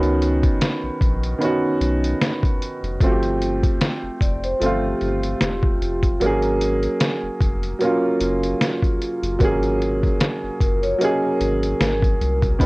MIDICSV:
0, 0, Header, 1, 5, 480
1, 0, Start_track
1, 0, Tempo, 800000
1, 1803, Time_signature, 4, 2, 24, 8
1, 7595, End_track
2, 0, Start_track
2, 0, Title_t, "Vibraphone"
2, 0, Program_c, 0, 11
2, 2526, Note_on_c, 0, 74, 67
2, 2651, Note_off_c, 0, 74, 0
2, 2665, Note_on_c, 0, 72, 77
2, 2762, Note_off_c, 0, 72, 0
2, 2767, Note_on_c, 0, 69, 81
2, 2892, Note_off_c, 0, 69, 0
2, 2903, Note_on_c, 0, 67, 68
2, 3595, Note_off_c, 0, 67, 0
2, 6364, Note_on_c, 0, 70, 68
2, 6490, Note_off_c, 0, 70, 0
2, 6496, Note_on_c, 0, 73, 78
2, 6597, Note_off_c, 0, 73, 0
2, 6600, Note_on_c, 0, 75, 78
2, 6728, Note_off_c, 0, 75, 0
2, 6737, Note_on_c, 0, 70, 68
2, 7432, Note_off_c, 0, 70, 0
2, 7595, End_track
3, 0, Start_track
3, 0, Title_t, "Upright piano"
3, 0, Program_c, 1, 0
3, 0, Control_c, 1, 64, 127
3, 0, Note_on_c, 1, 51, 84
3, 0, Note_on_c, 1, 59, 76
3, 0, Note_on_c, 1, 61, 80
3, 0, Note_on_c, 1, 66, 90
3, 756, Note_off_c, 1, 51, 0
3, 761, Note_off_c, 1, 59, 0
3, 767, Note_off_c, 1, 61, 0
3, 774, Note_off_c, 1, 66, 0
3, 831, Note_on_c, 1, 51, 71
3, 843, Note_on_c, 1, 59, 68
3, 855, Note_on_c, 1, 61, 71
3, 867, Note_on_c, 1, 66, 93
3, 1710, Note_off_c, 1, 51, 0
3, 1716, Note_off_c, 1, 59, 0
3, 1722, Note_off_c, 1, 61, 0
3, 1728, Note_off_c, 1, 66, 0
3, 1803, Note_on_c, 1, 53, 79
3, 1810, Control_c, 1, 64, 0
3, 1815, Note_on_c, 1, 57, 76
3, 1823, Note_on_c, 1, 60, 76
3, 1835, Note_on_c, 1, 66, 75
3, 1862, Note_off_c, 1, 66, 0
3, 1873, Note_on_c, 1, 67, 94
3, 1919, Control_c, 1, 64, 127
3, 2676, Note_off_c, 1, 53, 0
3, 2682, Note_off_c, 1, 57, 0
3, 2686, Note_off_c, 1, 60, 0
3, 2711, Note_off_c, 1, 67, 0
3, 2759, Note_on_c, 1, 53, 79
3, 2769, Note_on_c, 1, 57, 75
3, 2781, Note_on_c, 1, 60, 72
3, 2795, Note_on_c, 1, 65, 89
3, 3634, Note_off_c, 1, 53, 0
3, 3639, Note_off_c, 1, 57, 0
3, 3645, Note_off_c, 1, 60, 0
3, 3652, Note_off_c, 1, 65, 0
3, 3720, Note_on_c, 1, 54, 85
3, 3730, Control_c, 1, 64, 0
3, 3731, Note_on_c, 1, 58, 85
3, 3743, Note_on_c, 1, 61, 70
3, 3757, Note_on_c, 1, 68, 93
3, 3846, Control_c, 1, 64, 127
3, 4595, Note_off_c, 1, 54, 0
3, 4600, Note_off_c, 1, 58, 0
3, 4606, Note_off_c, 1, 61, 0
3, 4613, Note_off_c, 1, 68, 0
3, 4674, Note_on_c, 1, 54, 78
3, 4688, Note_on_c, 1, 58, 76
3, 4697, Note_on_c, 1, 61, 75
3, 4709, Note_on_c, 1, 65, 88
3, 5552, Note_off_c, 1, 54, 0
3, 5559, Note_off_c, 1, 58, 0
3, 5564, Note_off_c, 1, 61, 0
3, 5569, Note_off_c, 1, 65, 0
3, 5631, Note_on_c, 1, 54, 90
3, 5644, Note_on_c, 1, 58, 79
3, 5653, Note_on_c, 1, 61, 76
3, 5666, Note_on_c, 1, 68, 93
3, 6510, Note_off_c, 1, 54, 0
3, 6517, Note_off_c, 1, 58, 0
3, 6521, Note_off_c, 1, 61, 0
3, 6528, Note_off_c, 1, 68, 0
3, 6592, Note_on_c, 1, 54, 85
3, 6605, Note_on_c, 1, 58, 67
3, 6614, Note_on_c, 1, 61, 72
3, 6627, Note_on_c, 1, 68, 100
3, 7471, Note_off_c, 1, 54, 0
3, 7477, Note_off_c, 1, 58, 0
3, 7482, Note_off_c, 1, 61, 0
3, 7489, Note_off_c, 1, 68, 0
3, 7554, Note_on_c, 1, 51, 84
3, 7563, Note_on_c, 1, 59, 88
3, 7570, Control_c, 1, 64, 0
3, 7575, Note_on_c, 1, 61, 73
3, 7595, Note_off_c, 1, 51, 0
3, 7595, Note_off_c, 1, 59, 0
3, 7595, Note_off_c, 1, 61, 0
3, 7595, End_track
4, 0, Start_track
4, 0, Title_t, "Sub bass"
4, 0, Program_c, 2, 38
4, 0, Note_on_c, 2, 37, 108
4, 288, Note_off_c, 2, 37, 0
4, 499, Note_on_c, 2, 34, 47
4, 541, Note_off_c, 2, 34, 0
4, 606, Note_on_c, 2, 34, 99
4, 807, Note_off_c, 2, 34, 0
4, 1084, Note_on_c, 2, 35, 93
4, 1285, Note_off_c, 2, 35, 0
4, 1698, Note_on_c, 2, 29, 87
4, 1787, Note_off_c, 2, 29, 0
4, 1804, Note_on_c, 2, 31, 108
4, 2207, Note_off_c, 2, 31, 0
4, 2419, Note_on_c, 2, 29, 47
4, 2461, Note_off_c, 2, 29, 0
4, 2526, Note_on_c, 2, 29, 96
4, 2727, Note_off_c, 2, 29, 0
4, 2766, Note_on_c, 2, 31, 95
4, 2967, Note_off_c, 2, 31, 0
4, 3009, Note_on_c, 2, 31, 92
4, 3208, Note_off_c, 2, 31, 0
4, 3249, Note_on_c, 2, 28, 100
4, 3448, Note_off_c, 2, 28, 0
4, 3487, Note_on_c, 2, 29, 95
4, 3687, Note_off_c, 2, 29, 0
4, 3725, Note_on_c, 2, 32, 109
4, 4128, Note_off_c, 2, 32, 0
4, 4337, Note_on_c, 2, 29, 46
4, 4379, Note_off_c, 2, 29, 0
4, 4444, Note_on_c, 2, 29, 95
4, 4645, Note_off_c, 2, 29, 0
4, 4924, Note_on_c, 2, 30, 90
4, 5125, Note_off_c, 2, 30, 0
4, 5535, Note_on_c, 2, 30, 83
4, 5625, Note_off_c, 2, 30, 0
4, 5641, Note_on_c, 2, 32, 113
4, 6046, Note_off_c, 2, 32, 0
4, 6259, Note_on_c, 2, 30, 46
4, 6301, Note_off_c, 2, 30, 0
4, 6364, Note_on_c, 2, 30, 95
4, 6565, Note_off_c, 2, 30, 0
4, 6844, Note_on_c, 2, 32, 98
4, 7045, Note_off_c, 2, 32, 0
4, 7083, Note_on_c, 2, 32, 95
4, 7285, Note_off_c, 2, 32, 0
4, 7325, Note_on_c, 2, 36, 99
4, 7526, Note_off_c, 2, 36, 0
4, 7561, Note_on_c, 2, 37, 116
4, 7595, Note_off_c, 2, 37, 0
4, 7595, End_track
5, 0, Start_track
5, 0, Title_t, "Drums"
5, 18, Note_on_c, 9, 42, 35
5, 78, Note_off_c, 9, 42, 0
5, 132, Note_on_c, 9, 42, 66
5, 192, Note_off_c, 9, 42, 0
5, 260, Note_on_c, 9, 36, 90
5, 261, Note_on_c, 9, 42, 48
5, 320, Note_off_c, 9, 36, 0
5, 321, Note_off_c, 9, 42, 0
5, 368, Note_on_c, 9, 42, 80
5, 371, Note_on_c, 9, 38, 104
5, 428, Note_off_c, 9, 42, 0
5, 431, Note_off_c, 9, 38, 0
5, 606, Note_on_c, 9, 36, 92
5, 611, Note_on_c, 9, 42, 61
5, 666, Note_off_c, 9, 36, 0
5, 671, Note_off_c, 9, 42, 0
5, 741, Note_on_c, 9, 42, 49
5, 801, Note_off_c, 9, 42, 0
5, 849, Note_on_c, 9, 42, 66
5, 909, Note_off_c, 9, 42, 0
5, 1088, Note_on_c, 9, 42, 59
5, 1148, Note_off_c, 9, 42, 0
5, 1224, Note_on_c, 9, 42, 50
5, 1284, Note_off_c, 9, 42, 0
5, 1329, Note_on_c, 9, 38, 117
5, 1336, Note_on_c, 9, 42, 80
5, 1389, Note_off_c, 9, 38, 0
5, 1396, Note_off_c, 9, 42, 0
5, 1458, Note_on_c, 9, 36, 92
5, 1470, Note_on_c, 9, 42, 37
5, 1518, Note_off_c, 9, 36, 0
5, 1530, Note_off_c, 9, 42, 0
5, 1572, Note_on_c, 9, 42, 59
5, 1632, Note_off_c, 9, 42, 0
5, 1704, Note_on_c, 9, 42, 47
5, 1764, Note_off_c, 9, 42, 0
5, 1803, Note_on_c, 9, 36, 116
5, 1807, Note_on_c, 9, 42, 74
5, 1863, Note_off_c, 9, 36, 0
5, 1867, Note_off_c, 9, 42, 0
5, 1937, Note_on_c, 9, 42, 33
5, 1997, Note_off_c, 9, 42, 0
5, 2051, Note_on_c, 9, 42, 64
5, 2111, Note_off_c, 9, 42, 0
5, 2181, Note_on_c, 9, 36, 82
5, 2182, Note_on_c, 9, 42, 49
5, 2241, Note_off_c, 9, 36, 0
5, 2242, Note_off_c, 9, 42, 0
5, 2287, Note_on_c, 9, 42, 80
5, 2290, Note_on_c, 9, 38, 104
5, 2347, Note_off_c, 9, 42, 0
5, 2350, Note_off_c, 9, 38, 0
5, 2526, Note_on_c, 9, 36, 82
5, 2533, Note_on_c, 9, 42, 62
5, 2586, Note_off_c, 9, 36, 0
5, 2593, Note_off_c, 9, 42, 0
5, 2663, Note_on_c, 9, 42, 47
5, 2723, Note_off_c, 9, 42, 0
5, 2770, Note_on_c, 9, 42, 65
5, 2830, Note_off_c, 9, 42, 0
5, 3007, Note_on_c, 9, 42, 60
5, 3067, Note_off_c, 9, 42, 0
5, 3141, Note_on_c, 9, 42, 53
5, 3201, Note_off_c, 9, 42, 0
5, 3244, Note_on_c, 9, 38, 119
5, 3251, Note_on_c, 9, 42, 84
5, 3304, Note_off_c, 9, 38, 0
5, 3311, Note_off_c, 9, 42, 0
5, 3376, Note_on_c, 9, 36, 90
5, 3436, Note_off_c, 9, 36, 0
5, 3492, Note_on_c, 9, 42, 55
5, 3552, Note_off_c, 9, 42, 0
5, 3616, Note_on_c, 9, 36, 84
5, 3620, Note_on_c, 9, 42, 45
5, 3676, Note_off_c, 9, 36, 0
5, 3679, Note_off_c, 9, 42, 0
5, 3726, Note_on_c, 9, 42, 77
5, 3786, Note_off_c, 9, 42, 0
5, 3854, Note_on_c, 9, 42, 34
5, 3914, Note_off_c, 9, 42, 0
5, 3967, Note_on_c, 9, 42, 64
5, 4027, Note_off_c, 9, 42, 0
5, 4097, Note_on_c, 9, 42, 45
5, 4157, Note_off_c, 9, 42, 0
5, 4202, Note_on_c, 9, 42, 85
5, 4205, Note_on_c, 9, 38, 106
5, 4262, Note_off_c, 9, 42, 0
5, 4265, Note_off_c, 9, 38, 0
5, 4443, Note_on_c, 9, 36, 88
5, 4449, Note_on_c, 9, 42, 61
5, 4503, Note_off_c, 9, 36, 0
5, 4509, Note_off_c, 9, 42, 0
5, 4579, Note_on_c, 9, 42, 48
5, 4639, Note_off_c, 9, 42, 0
5, 4685, Note_on_c, 9, 42, 67
5, 4745, Note_off_c, 9, 42, 0
5, 4924, Note_on_c, 9, 42, 66
5, 4984, Note_off_c, 9, 42, 0
5, 5060, Note_on_c, 9, 42, 53
5, 5120, Note_off_c, 9, 42, 0
5, 5166, Note_on_c, 9, 38, 122
5, 5173, Note_on_c, 9, 42, 81
5, 5226, Note_off_c, 9, 38, 0
5, 5233, Note_off_c, 9, 42, 0
5, 5294, Note_on_c, 9, 36, 91
5, 5303, Note_on_c, 9, 42, 36
5, 5354, Note_off_c, 9, 36, 0
5, 5363, Note_off_c, 9, 42, 0
5, 5409, Note_on_c, 9, 42, 60
5, 5469, Note_off_c, 9, 42, 0
5, 5539, Note_on_c, 9, 42, 45
5, 5599, Note_off_c, 9, 42, 0
5, 5640, Note_on_c, 9, 36, 107
5, 5643, Note_on_c, 9, 42, 74
5, 5700, Note_off_c, 9, 36, 0
5, 5703, Note_off_c, 9, 42, 0
5, 5776, Note_on_c, 9, 42, 35
5, 5836, Note_off_c, 9, 42, 0
5, 5889, Note_on_c, 9, 42, 65
5, 5949, Note_off_c, 9, 42, 0
5, 6017, Note_on_c, 9, 36, 86
5, 6018, Note_on_c, 9, 42, 47
5, 6077, Note_off_c, 9, 36, 0
5, 6078, Note_off_c, 9, 42, 0
5, 6121, Note_on_c, 9, 42, 83
5, 6124, Note_on_c, 9, 38, 110
5, 6181, Note_off_c, 9, 42, 0
5, 6184, Note_off_c, 9, 38, 0
5, 6363, Note_on_c, 9, 36, 84
5, 6367, Note_on_c, 9, 42, 60
5, 6423, Note_off_c, 9, 36, 0
5, 6427, Note_off_c, 9, 42, 0
5, 6500, Note_on_c, 9, 42, 51
5, 6560, Note_off_c, 9, 42, 0
5, 6607, Note_on_c, 9, 42, 71
5, 6667, Note_off_c, 9, 42, 0
5, 6844, Note_on_c, 9, 42, 65
5, 6904, Note_off_c, 9, 42, 0
5, 6978, Note_on_c, 9, 42, 53
5, 7038, Note_off_c, 9, 42, 0
5, 7084, Note_on_c, 9, 38, 125
5, 7090, Note_on_c, 9, 42, 85
5, 7144, Note_off_c, 9, 38, 0
5, 7150, Note_off_c, 9, 42, 0
5, 7214, Note_on_c, 9, 36, 92
5, 7224, Note_on_c, 9, 42, 36
5, 7274, Note_off_c, 9, 36, 0
5, 7284, Note_off_c, 9, 42, 0
5, 7329, Note_on_c, 9, 42, 59
5, 7389, Note_off_c, 9, 42, 0
5, 7455, Note_on_c, 9, 36, 85
5, 7459, Note_on_c, 9, 42, 44
5, 7515, Note_off_c, 9, 36, 0
5, 7519, Note_off_c, 9, 42, 0
5, 7561, Note_on_c, 9, 36, 111
5, 7566, Note_on_c, 9, 42, 76
5, 7595, Note_off_c, 9, 36, 0
5, 7595, Note_off_c, 9, 42, 0
5, 7595, End_track
0, 0, End_of_file